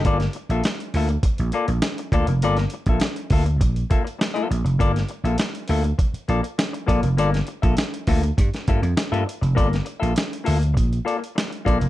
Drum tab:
HH |xxxxxxoxxxxxxxxx|xxxxxxoxxxxxxxxx|xxxxxxoxxxxxxxxx|xxxxxxoxxxxxxxxx|
SD |-o--o-------o---|-o--o-------o---|-o--o-------o---|-o--o----o--o---|
BD |o-------o-----o-|---o--o-o-o-----|o-------o-----o-|---o--o-o-o-----|

HH |xxxxxxoxxxxxxxxx|
SD |-o--o-------o---|
BD |o-------o-----o-|